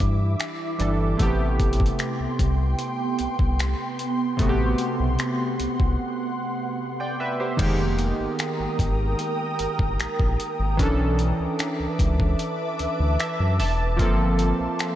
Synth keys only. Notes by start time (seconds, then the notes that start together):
Already playing: E3 G3 D4 E4
0.79 E3 G3 D4 A4
1.17 C3 A3 B3
1.23 G4
4.37 C3 A3 B3
4.43 F#4
4.49 G4
7.00 D5 G5
7.20 B4 E5
7.40 G4 C5
7.57 D#3 G#3 A#3
7.62 G4
10.77 E3 C#4 D4
10.83 A4
13.20 E5
13.60 A5
13.97 F3 A#3 C4
14.02 A4